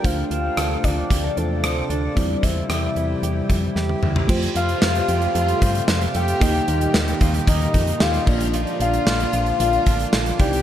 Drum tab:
CC |----------------|----------------|x---------------|--------------x-|
HH |x-x-x-x-x-x-x-x-|x-x-x-x-x-x-----|-xxx-xxxxxxx-xxx|xxxx-xxxxxxx-x-x|
TB |----------------|----------------|----x-------x---|----x-------x---|
SD |----r-------r---|----r-------o---|----o-------o---|----o-------o---|
T1 |----------------|-------------o--|----------------|----------------|
T2 |----------------|--------------o-|----------------|----------------|
FT |----------------|---------------o|----------------|----------------|
BD |o-----o-o-------|o-o-------o-----|o---------o-----|o-----o-o-o---o-|

CC |----------------|
HH |xxxx-xxxxxxx-xxx|
TB |----x-------x---|
SD |----o-------o---|
T1 |----------------|
T2 |----------------|
FT |----------------|
BD |----------o---o-|